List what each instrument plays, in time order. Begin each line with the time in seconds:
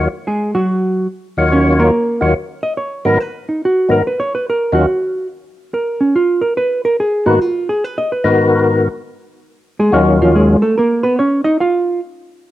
0.27 hollow-body jazz guitar G#3 G#4
0.55 hollow-body jazz guitar F#3 F#4
1.37 tonewheel organ D#2 D#3 F#3 F4 C#5
1.52 hollow-body jazz guitar C#4 C#5
1.79 hollow-body jazz guitar A#3 A#4
2.21 tonewheel organ D#2 D#3 F#3 F4 C#5
2.63 hollow-body jazz guitar D#5
2.77 hollow-body jazz guitar C#5
3.05 tonewheel organ G#2 D#3 F#3 B3 A#4, hollow-body jazz guitar A#4
3.20 hollow-body jazz guitar B4
3.49 hollow-body jazz guitar D#4
3.65 hollow-body jazz guitar F#4
3.89 tonewheel organ G#2 D#3 F#3 B3 A#4, hollow-body jazz guitar A#4
4.07 hollow-body jazz guitar B4
4.20 hollow-body jazz guitar C#5
4.35 hollow-body jazz guitar B4
4.50 hollow-body jazz guitar A#4
4.72 tonewheel organ D#2 D#3 F#3 C#4 F4, hollow-body jazz guitar F#4
5.74 hollow-body jazz guitar A#4
6.01 hollow-body jazz guitar C#4
6.16 hollow-body jazz guitar F4
6.42 hollow-body jazz guitar A#4
6.57 hollow-body jazz guitar B4
6.85 hollow-body jazz guitar A#4
7.00 hollow-body jazz guitar G#4
7.26 tonewheel organ G#2 D#3 A#3 B3 F#4, hollow-body jazz guitar F#4
7.41 hollow-body jazz guitar F4
7.69 hollow-body jazz guitar G#4
7.84 hollow-body jazz guitar B4
7.98 hollow-body jazz guitar D#5
8.12 hollow-body jazz guitar B4
8.24 tonewheel organ G#2 D#3 B3 F#4 A#4
9.79 hollow-body jazz guitar G#3 G#4
9.92 tonewheel organ D#2 D#3 F#3 C#4 F4, hollow-body jazz guitar F#3 F#4
10.22 hollow-body jazz guitar F3 F4
10.36 hollow-body jazz guitar G#3 G#4
10.62 hollow-body jazz guitar A3 A4
10.78 hollow-body jazz guitar A#3 A#4
11.03 hollow-body jazz guitar B3 B4
11.19 hollow-body jazz guitar C#4 C#5
11.44 hollow-body jazz guitar D#4 D#5
11.60 hollow-body jazz guitar F4 F5